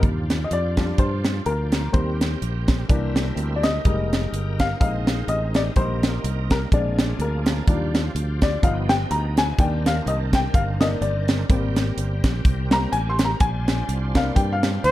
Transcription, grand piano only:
0.44 D#5
0.53 D5
0.77 F3 G3 D4
0.99 C5
1.46 A#4
1.92 G3 A#3 C4 C5
2.88 E3 A#3 D4
3.56 D5
3.63 D#5
3.85 G3 G#3 A#3 D#4
4.60 F5
4.80 G#3 C4 D#4 F5
5.29 D#5
5.56 D5
5.76 G3 A#3 D#4 C5
6.52 A#4
6.73 G#3 C4 D4 D5
7.22 A#4
7.67 F3 G3 D4
8.43 D5
8.62 F3 B3 D#4 F5
8.89 G5
9.11 A#5
9.38 G#5
9.59 D#3 A#3 D4 G5
9.87 F5
10.08 D#5
10.35 G5
10.55 F5
10.81 D#3 A#3 D4 D#5
11.02 D5
11.49 G3 A#3 C4
12.71 G3 A#3 C4 A#5
12.92 G#5
13.10 C6
13.25 A#5
13.41 G#5
14.15 G3 A#3 C4 D4 F5
14.36 G5
14.53 F5

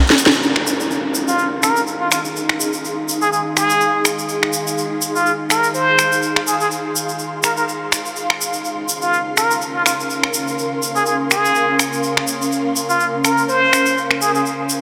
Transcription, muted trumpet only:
1.28 F4
1.63 A#4
2.01 F4
2.12 F4
3.22 G#4
3.33 G#4
3.57 G#4
5.15 F4
5.50 A#4
5.74 C5
6.47 G#4
6.61 G#4
7.44 A#4
7.57 A#4
9.03 F4
9.37 A#4
9.75 F4
9.86 F4
10.96 G#4
11.07 G#4
11.31 G#4
12.90 F4
13.25 A#4
13.49 C5
14.21 G#4
14.35 G#4

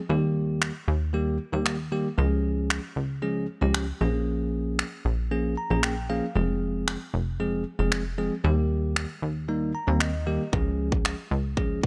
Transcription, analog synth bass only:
0.10 D#2
0.88 D#2
1.53 D#2
2.18 C#2
2.96 C#2
3.62 C#2
4.01 A#1
5.05 A#1
5.70 A#1
6.36 F1
7.14 F1
7.79 F1
8.44 D#2
9.22 D#2
9.88 D#2
10.53 C#2
11.31 C#2

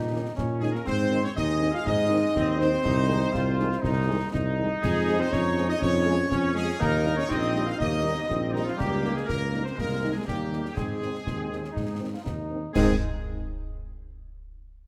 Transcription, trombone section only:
Already playing: D#4
0.37 C#4
0.85 C4
1.37 G#3
2.35 C4
2.85 D#4
3.33 F4
3.82 D#4
4.32 D#4
6.32 C#4
6.79 D#4
7.29 C4
7.80 A#3
8.27 C4
8.76 A#3
9.77 G#3
10.25 A#3
10.76 C4
11.25 C4
11.62 C#4
11.72 D#4
12.13 F4
12.24 D#4
12.74 G#3 C4

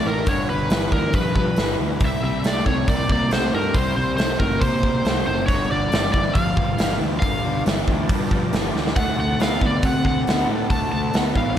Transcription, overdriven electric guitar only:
0.07 C3 A3
0.29 G2 D3
0.50 G2 D3
0.72 G2 E3
0.94 G2 E3
1.16 G2 F3
1.39 G2 F3
1.59 G2 E3
1.81 G2 E3
2.02 C3 G3
2.24 C3 G3
2.45 C3 A3
2.67 C3 A3
2.88 C3 A#3
3.10 C3 A#3
3.32 C3 A3
3.54 C3 A3
3.75 C3 G3
3.96 C3 G3
4.19 C3 A3
4.40 C3 A3
4.61 C3 A#3
4.83 C3 A#3
5.06 C3 A3
5.27 C3 A3
5.49 G2 D3
5.71 G2 D3
5.91 G2 E3
6.12 G2 E3
6.34 G2 F3
6.55 G2 F3
6.77 G2 E3
6.99 G2 E3
7.21 G2 D3
7.43 G2 D3
7.66 G2 E3
7.88 G2 E3
8.09 G2 F3
8.32 G2 F3
8.53 G2 E3
8.75 G2 E3
8.98 D3 A3
9.18 D3 A3
9.40 D3 B3
9.62 D3 B3
9.83 D3 C4
10.04 D3 C4
10.27 D3 B3
10.49 D3 B3
10.70 D3 A3
10.92 D3 A3
11.14 D3 B3
11.36 D3 B3

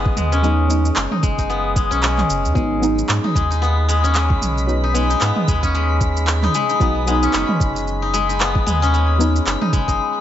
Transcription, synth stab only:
Already playing: F#3 B3 D#4
0.42 F#3 B3 D#4
0.68 F#3 B3 D#4
2.54 F#3 B3 D#4
2.79 F#3 B3
2.83 D#4
4.67 F#3 B3 D#4
4.93 F#3 B3 D#4
6.79 F#3 B3 D#4
7.05 F#3 B3
7.10 D#4
9.18 F#3 B3 D#4

